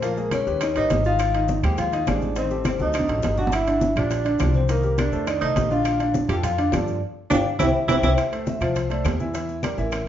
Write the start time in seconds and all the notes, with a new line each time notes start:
Already playing: A#1
0.02 F3 A#3 F4 A#4 F5, high bongo, high timbale, maracas
0.17 G#3 G#4 A#4, high bongo, high conga, maracas
0.31 C#4 C#5, high bongo, high conga, high timbale, low timbale, claves, maracas
0.47 D#2 G3 G4 B4, high conga, maracas
0.61 D#3 C#4 D#4 C#5 D#5, high bongo, high conga, high timbale, claves, maracas
0.75 A1 G3 D#4 G4 B4 D#5, high bongo, high conga, high timbale, maracas
0.90 G#1, high bongo, low bongo, high conga, high timbale, low timbale, maracas
1.04 D#3 D#4 F4 D#5 F5, high bongo, high conga, maracas
1.19 high bongo, high conga, high timbale, claves, maracas
1.34 D#3 D#4 D#5, high conga, high timbale, maracas
1.48 high bongo, high conga, low timbale, maracas
1.63 D#2 G#3 G4 G#4 C5 G5, high conga, low conga, high timbale, claves, maracas
1.78 F4 F5, high bongo, high conga, low conga, high timbale, maracas
1.92 D#3 D#4 D#5, high conga, high timbale, maracas
2.07 A1 G#3 D4 G#4 C5 D5, high bongo, low bongo, high conga, high timbale, low timbale, claves, maracas
2.22 high conga, maracas
2.36 D#3 C4 D#4 C5 D#5, high bongo, high conga, high timbale, maracas
2.50 G3 G4 A4, high bongo, high conga, maracas
2.65 C4 C5, high bongo, high conga, high timbale, low timbale, claves, maracas
2.79 D2 F#3 D#4 F#4 A4 D#5, high conga, maracas
2.93 D3 D4 D5, high bongo, high timbale, claves, maracas
2.99 high conga
3.08 A1 F#3 F#4 A4, high bongo, high timbale, maracas
3.18 low conga
3.23 G1, high bongo, low bongo, high timbale, low timbale, maracas
3.37 D3 D4 F#4 D5 F#5, high bongo, low conga, maracas
3.47 low conga
3.52 E4 E5, high bongo, high conga, high timbale, claves, maracas
3.67 D3 D4 D5, high conga, high timbale, maracas
3.81 high bongo, high conga, low timbale, maracas
3.96 A#1 F3 D4 F4 G4 D5, high conga, low conga, high timbale, claves, maracas
4.11 high bongo, high conga, high timbale, maracas
4.25 D3 D4 D5, high conga, high timbale, maracas
4.39 C2 F3 F4 G4, high bongo, low bongo, high conga, high timbale, low timbale, claves, maracas
4.54 C4 C5, high conga, maracas
4.69 D#3 A#3 D#4 A#4 D#5, high bongo, high conga, high timbale, maracas
4.83 G3 G4 A#4, high bongo, high conga, maracas
4.98 D4 D5, high bongo, high conga, high timbale, low timbale, claves, maracas
5.12 F2 A3 A4 C5, high conga, maracas
5.26 D#3 D4 D#4 D5 D#5, high bongo, high conga, high timbale, claves, maracas
5.41 C2 A3 D#4 A4 C5 D#5, high bongo, high conga, high timbale, maracas
5.56 A#1, high bongo, low bongo, high conga, high timbale, low timbale, maracas
5.70 D3 D4 F4 D5 F5, high bongo, high conga, maracas
5.84 high bongo, high conga, high timbale, claves, maracas
5.99 D3 D4 D5, high conga, high timbale, maracas
6.14 high bongo, high conga, low timbale, maracas
6.28 F2 F3 F4 G4 A4 G5, high conga, low conga, high timbale, claves, maracas
6.43 F4 F5, high bongo, high conga, low conga, high timbale, maracas
6.58 D3 D4 D5, high conga, high timbale, maracas
6.72 G2 F3 D4 F4 A4 D5, high bongo, low bongo, high conga, high timbale, low timbale, claves, maracas
6.88 maracas
7.30 G1 D4 F4 G4 D5 F5 G5, high bongo, high conga, high timbale, claves, maracas
7.59 C2 C4 E4 G4 C5 E5 G5, high bongo, high conga, high timbale, claves, maracas
7.88 C2 C4 E4 G4 C5 E5 G5, high bongo, high conga, high timbale, claves, maracas
8.02 C2 C4 E4 G4 C5 E5 G5, high bongo, high conga, high timbale, claves, maracas
8.18 high bongo, high conga, high timbale, claves, maracas
8.32 A3 A4 C5, high conga, high timbale, maracas
8.47 E5, high bongo, high conga, low timbale, maracas
8.61 C2 F3 F4 C5 F5, high conga, low conga, high timbale, claves, maracas
8.76 high bongo, high conga, high timbale, maracas
8.90 A3 A4 C5 D5, high conga, high timbale, maracas
9.05 E2, high bongo, low bongo, high conga, high timbale, low timbale, claves, maracas
9.20 E3 E4 E5, high conga, maracas
9.34 E3 E4 E5, high bongo, high conga, high timbale, maracas
9.49 high bongo, high conga, maracas
9.63 G3 G4 A#4 D5, high bongo, high conga, high timbale, low timbale, claves, maracas
9.78 A1 E3 E4 A#4 E5, high conga, maracas
9.92 high bongo, high conga, high timbale, claves, maracas